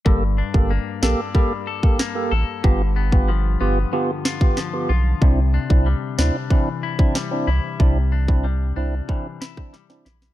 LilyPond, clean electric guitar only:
\new Staff \with { instrumentName = "Clean electric guitar" } { \time 4/4 \key c \mixolydian \tempo 4 = 93 g,8 d'8 bes8 d'8 g8 a'8 bes8 a'8 | g,8 b8 f8 b8 d8 f'8 f8 f'8 | c8 d'8 g8 d'8 e8 e'8 g8 e'8 | c8 d'8 g8 d'8 e8 e'8 g8 e'8 | }